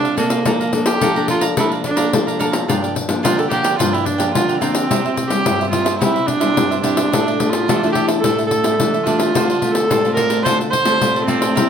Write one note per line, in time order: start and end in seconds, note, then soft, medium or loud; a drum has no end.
0.00 0.43 C3 medium
0.00 0.14 C4 medium
0.00 0.14 D4 medium
0.00 0.18 D4 loud
0.00 0.15 A4 medium
0.05 0.16 A4 soft
0.05 0.17 D5 soft
0.05 0.17 F5 medium
0.05 pandeiro soft
0.17 0.89 A#3 medium
0.17 0.36 C4 medium
0.17 0.31 D4 medium
0.17 0.36 D4 medium
0.17 0.30 A4 medium
0.17 0.36 A4 medium
0.17 0.29 D5 medium
0.17 0.28 F5 medium
0.17 pandeiro medium
0.29 0.44 A4 soft
0.29 0.44 D5 soft
0.29 0.44 F5 soft
0.29 pandeiro medium
0.45 0.99 F3 medium
0.45 0.70 A#3 soft
0.45 0.70 D4 medium
0.45 0.59 A4 medium
0.45 0.70 A4 medium
0.45 0.59 D5 medium
0.45 0.59 F5 medium
0.45 0.59 A#5 medium
0.45 pandeiro medium
0.60 0.72 D5 soft
0.60 0.72 F5 soft
0.60 0.72 A#5 medium
0.60 pandeiro soft
0.73 0.90 A#3 medium
0.73 0.90 D4 medium
0.73 0.90 A4 medium
0.73 muted cavaquinho stroke soft
0.73 pandeiro medium
0.86 1.30 G4 medium
0.86 pandeiro medium
1.01 1.55 F3 medium
1.01 1.11 A#3 medium
1.01 1.12 D4 medium
1.01 1.15 A4 medium
1.01 1.12 A4 medium
1.01 1.15 D5 medium
1.01 1.15 F5 medium
1.01 1.15 A#5 medium
1.01 pandeiro medium
1.16 1.54 A#3 medium
1.16 1.54 D4 medium
1.16 1.54 A4 medium
1.16 1.28 D5 soft
1.16 1.28 F5 soft
1.16 1.29 A#5 medium
1.16 pandeiro soft
1.28 1.43 F4 medium
1.28 1.42 A4 soft
1.28 1.41 D5 soft
1.28 1.41 F5 soft
1.28 1.40 A#5 soft
1.28 pandeiro medium
1.41 1.56 D5 medium
1.41 1.56 F5 medium
1.41 1.55 A#5 medium
1.41 pandeiro medium
1.57 2.10 F3 medium
1.57 1.84 A#3 medium
1.57 1.84 D4 medium
1.57 1.72 E4 medium
1.57 1.70 A4 medium
1.57 1.84 A4 medium
1.57 1.70 D5 medium
1.57 1.71 F5 medium
1.57 1.70 A#5 medium
1.57 pandeiro medium
1.72 1.84 D5 soft
1.72 1.83 F5 soft
1.72 1.84 A#5 soft
1.72 pandeiro soft
1.84 2.37 D4 medium
1.84 muted cavaquinho stroke soft
1.84 pandeiro medium
1.96 2.08 A#3 medium
1.96 2.08 D4 medium
1.96 2.08 A4 medium
1.96 2.25 D5 medium
1.96 2.25 F5 medium
1.96 2.25 A#5 medium
1.96 pandeiro medium
2.13 2.66 F3 medium
2.13 2.36 A#3 medium
2.13 2.37 D4 medium
2.13 2.37 A4 medium
2.13 pandeiro medium
2.27 2.38 D5 soft
2.27 2.39 F5 soft
2.27 2.40 A#5 soft
2.27 pandeiro soft
2.39 2.58 A#3 medium
2.39 2.59 D4 medium
2.39 2.53 A4 medium
2.39 2.59 A4 medium
2.39 2.52 D5 medium
2.39 2.52 F5 medium
2.39 2.51 A#5 medium
2.39 pandeiro medium
2.52 2.67 D5 soft
2.52 2.67 F5 soft
2.52 2.66 A#5 soft
2.52 pandeiro medium
2.68 3.21 G2 medium
2.68 3.06 F3 soft
2.68 3.06 A#3 medium
2.68 3.06 D4 medium
2.68 2.81 F4 medium
2.68 2.82 A#4 medium
2.68 2.82 D5 medium
2.68 2.81 G5 medium
2.68 pandeiro medium
2.82 2.94 A#4 soft
2.82 2.94 D5 soft
2.82 2.95 G5 soft
2.82 pandeiro soft
2.95 muted cavaquinho stroke soft
2.95 pandeiro medium
3.08 3.47 F3 medium
3.08 3.47 A#3 medium
3.08 3.47 D4 medium
3.08 pandeiro medium
3.23 3.77 D3 medium
3.23 3.36 F4 medium
3.23 3.41 F4 medium
3.23 3.37 A#4 medium
3.23 3.37 D5 medium
3.23 3.36 G5 medium
3.23 pandeiro medium
3.38 3.50 A4 medium
3.38 3.49 A#4 soft
3.38 3.50 D5 soft
3.38 3.50 G5 soft
3.38 pandeiro soft
3.50 3.75 F3 medium
3.50 3.75 A#3 medium
3.50 3.75 D4 medium
3.50 3.64 F4 soft
3.50 3.77 G4 medium
3.50 3.64 A#4 medium
3.50 3.63 D5 soft
3.50 3.62 G5 soft
3.50 pandeiro medium
3.63 3.78 A#4 medium
3.63 3.78 D5 medium
3.63 3.77 G5 medium
3.63 pandeiro medium
3.79 4.33 G2 medium
3.79 4.17 F3 medium
3.79 4.17 A#3 medium
3.79 4.17 D4 medium
3.79 3.92 F4 medium
3.79 3.95 F4 medium
3.79 3.92 A#4 medium
3.79 3.92 D5 medium
3.79 3.91 G5 medium
3.79 pandeiro medium
3.93 4.08 E4 medium
3.93 4.05 A#4 soft
3.93 4.05 D5 soft
3.93 4.05 G5 soft
3.93 pandeiro soft
4.05 4.34 D4 medium
4.05 muted cavaquinho stroke soft
4.05 pandeiro medium
4.18 4.57 F3 medium
4.18 4.57 A#3 medium
4.18 4.58 D4 medium
4.18 4.47 A#4 medium
4.18 4.47 D5 medium
4.18 4.46 G5 medium
4.18 pandeiro medium
4.35 4.88 D3 medium
4.35 4.60 F4 medium
4.35 pandeiro medium
4.48 4.61 A#4 soft
4.48 4.61 D5 soft
4.48 4.61 G5 soft
4.48 pandeiro soft
4.60 4.86 F3 medium
4.60 4.86 A#3 medium
4.60 5.30 C4 medium
4.60 4.86 D4 medium
4.60 4.75 F4 medium
4.60 4.74 A#4 medium
4.60 4.73 D5 medium
4.60 4.73 G5 medium
4.60 pandeiro medium
4.74 4.89 A#4 soft
4.74 4.89 D5 soft
4.74 4.88 G5 soft
4.74 pandeiro medium
4.91 5.44 C3 medium
4.91 5.17 G3 soft
4.91 5.17 C4 medium
4.91 5.04 E4 medium
4.91 5.17 E4 medium
4.91 5.04 G4 medium
4.91 5.04 C5 medium
4.91 5.04 E5 medium
4.91 pandeiro medium
5.05 5.16 G4 soft
5.05 5.16 C5 soft
5.05 5.16 E5 soft
5.05 pandeiro soft
5.17 muted cavaquinho stroke soft
5.17 pandeiro medium
5.28 5.69 G3 medium
5.28 5.69 C4 medium
5.28 5.69 E4 medium
5.28 5.70 G4 medium
5.28 pandeiro medium
5.45 5.99 G2 medium
5.45 5.59 E4 medium
5.45 5.59 G4 medium
5.45 5.59 C5 medium
5.45 5.59 E5 medium
5.45 pandeiro medium
5.60 5.71 G4 soft
5.60 5.72 C5 soft
5.60 5.72 E5 soft
5.60 pandeiro soft
5.71 5.90 G3 medium
5.71 5.90 C4 medium
5.71 5.86 E4 soft
5.71 5.91 E4 medium
5.71 5.98 F4 medium
5.71 5.85 G4 soft
5.71 5.85 C5 soft
5.71 5.83 E5 medium
5.71 pandeiro medium
5.85 6.00 G4 soft
5.85 6.00 C5 medium
5.85 5.99 E5 medium
5.85 pandeiro medium
6.00 6.55 C3 medium
6.00 6.39 G3 medium
6.00 6.40 C4 medium
6.00 6.29 E4 medium
6.00 6.14 E4 medium
6.00 6.40 E4 medium
6.00 6.14 G4 medium
6.00 6.15 C5 medium
6.00 6.14 E5 medium
6.00 pandeiro medium
6.15 6.27 G4 soft
6.15 6.27 C5 soft
6.15 6.27 E5 medium
6.15 pandeiro soft
6.27 6.82 D4 medium
6.27 muted cavaquinho stroke soft
6.27 pandeiro medium
6.40 6.80 G3 medium
6.40 6.80 C4 medium
6.40 6.80 E4 medium
6.40 6.69 G4 soft
6.40 6.69 C5 medium
6.40 6.69 E5 medium
6.40 pandeiro medium
6.57 7.10 G2 medium
6.57 pandeiro medium
6.71 6.83 G4 soft
6.71 6.83 C5 soft
6.71 6.84 E5 soft
6.71 pandeiro soft
6.82 7.08 G3 medium
6.82 7.08 C4 medium
6.82 7.52 D4 medium
6.82 6.97 E4 medium
6.82 7.08 E4 medium
6.82 6.97 G4 medium
6.82 6.97 C5 medium
6.82 6.96 E5 medium
6.82 pandeiro medium
6.97 7.12 G4 soft
6.97 7.11 C5 soft
6.97 7.11 E5 soft
6.97 pandeiro medium
7.12 7.66 A2 medium
7.12 7.36 A3 soft
7.12 7.25 D4 medium
7.12 7.37 D4 soft
7.12 7.37 E4 medium
7.12 7.26 A4 medium
7.12 7.26 D5 medium
7.12 7.26 E5 medium
7.12 pandeiro medium
7.27 7.39 A4 soft
7.27 7.39 D5 soft
7.27 7.40 E5 soft
7.27 pandeiro soft
7.40 7.77 A3 medium
7.40 7.77 D4 medium
7.40 7.78 E4 medium
7.40 muted cavaquinho stroke soft
7.40 pandeiro medium
7.51 7.92 F4 medium
7.51 pandeiro medium
7.68 8.21 E3 medium
7.68 7.81 D4 medium
7.68 7.81 A4 medium
7.68 7.82 D5 medium
7.68 7.82 E5 medium
7.68 pandeiro medium
7.83 8.20 A3 medium
7.83 8.20 D4 medium
7.83 8.20 E4 medium
7.83 7.94 A4 soft
7.83 7.95 D5 soft
7.83 7.95 E5 soft
7.83 pandeiro soft
7.93 8.08 D4 soft
7.93 8.06 G4 medium
7.93 8.08 A4 soft
7.93 8.07 D5 soft
7.93 8.06 E5 soft
7.93 pandeiro medium
8.08 8.22 A4 soft
8.08 8.22 D5 medium
8.08 8.22 E5 medium
8.08 pandeiro medium
8.21 8.77 A2 medium
8.21 8.37 D4 medium
8.21 8.46 A4 loud
8.21 8.37 A4 medium
8.21 pandeiro medium
8.25 8.61 A3 medium
8.25 8.62 D4 medium
8.25 8.62 E4 medium
8.25 8.37 D5 medium
8.25 8.37 E5 medium
8.38 8.50 A4 soft
8.38 8.50 D5 soft
8.38 8.50 E5 soft
8.38 pandeiro soft
8.47 9.05 A4 loud
8.47 muted cavaquinho stroke soft
8.51 pandeiro medium
8.63 8.74 A3 medium
8.63 8.74 D4 medium
8.63 8.75 E4 medium
8.63 8.92 A4 medium
8.63 8.91 D5 medium
8.63 8.91 E5 medium
8.63 pandeiro medium
8.80 9.32 E3 medium
8.80 8.96 A3 medium
8.80 8.96 D4 medium
8.80 8.96 E4 medium
8.80 pandeiro medium
8.94 9.05 A4 soft
8.94 9.06 D5 soft
8.94 9.06 E5 soft
8.94 pandeiro soft
9.04 9.32 A3 medium
9.04 9.19 D4 medium
9.04 9.32 D4 medium
9.04 9.32 E4 medium
9.04 9.74 F4 medium
9.04 9.19 A4 medium
9.04 9.18 D5 medium
9.04 9.17 E5 medium
9.04 pandeiro medium
9.19 9.33 A4 soft
9.19 9.33 D5 soft
9.19 9.33 E5 soft
9.19 pandeiro medium
9.35 9.88 D3 medium
9.35 9.52 A3 medium
9.35 9.52 C4 medium
9.35 9.47 F4 medium
9.35 9.52 F4 medium
9.35 9.48 A4 medium
9.35 9.48 C5 medium
9.35 9.48 D5 medium
9.35 pandeiro medium
9.50 9.61 A4 soft
9.50 9.61 C5 soft
9.50 9.61 D5 soft
9.50 pandeiro soft
9.62 9.99 A3 medium
9.62 10.00 C4 medium
9.62 10.00 F4 medium
9.62 muted cavaquinho stroke soft
9.62 pandeiro medium
9.72 10.14 A4 loud
9.72 pandeiro medium
9.90 10.43 A2 medium
9.90 10.03 F4 medium
9.90 10.03 A4 medium
9.90 10.04 C5 medium
9.90 10.03 D5 medium
9.90 pandeiro medium
10.05 10.42 A3 medium
10.05 10.42 C4 medium
10.05 10.42 F4 medium
10.05 10.16 A4 soft
10.05 10.16 C5 soft
10.05 10.17 D5 soft
10.05 pandeiro soft
10.15 10.30 F4 soft
10.15 10.30 A4 medium
10.15 10.42 A#4 loud
10.15 10.29 C5 soft
10.15 10.29 D5 medium
10.15 pandeiro medium
10.30 10.44 A4 medium
10.30 10.44 C5 medium
10.30 10.44 D5 medium
10.30 pandeiro medium
10.44 10.99 D3 medium
10.44 10.72 A3 medium
10.44 10.72 C4 medium
10.44 10.58 F4 medium
10.44 10.72 F4 medium
10.44 10.58 A4 medium
10.44 10.57 C5 loud
10.44 10.59 C5 medium
10.44 10.59 D5 medium
10.44 pandeiro medium
10.60 10.72 A4 soft
10.60 10.72 C5 soft
10.60 10.72 D5 soft
10.60 pandeiro soft
10.71 11.24 C5 loud
10.71 muted cavaquinho stroke soft
10.71 pandeiro medium
10.85 10.96 A3 medium
10.85 10.96 C4 medium
10.85 10.96 F4 medium
10.85 11.14 A4 medium
10.85 11.14 C5 medium
10.85 11.13 D5 medium
10.85 pandeiro medium
11.01 11.54 A2 medium
11.01 11.25 A3 medium
11.01 11.25 C4 medium
11.01 11.25 F4 medium
11.01 pandeiro medium
11.16 11.27 A4 soft
11.16 11.28 C5 soft
11.16 11.28 D5 soft
11.16 pandeiro soft
11.26 11.46 A3 medium
11.26 11.69 C4 loud
11.26 11.46 C4 medium
11.26 11.41 F4 medium
11.26 11.47 F4 medium
11.26 11.41 A4 medium
11.26 11.40 C5 medium
11.26 11.40 D5 medium
11.26 pandeiro medium
11.41 11.55 A4 soft
11.41 11.55 C5 soft
11.41 11.54 D5 soft
11.41 pandeiro medium
11.55 11.69 C3 medium
11.55 11.69 G3 medium
11.55 11.69 A#3 medium
11.55 11.69 E4 medium
11.55 11.69 A#4 medium
11.55 11.69 C5 medium
11.55 11.69 E5 medium
11.55 pandeiro medium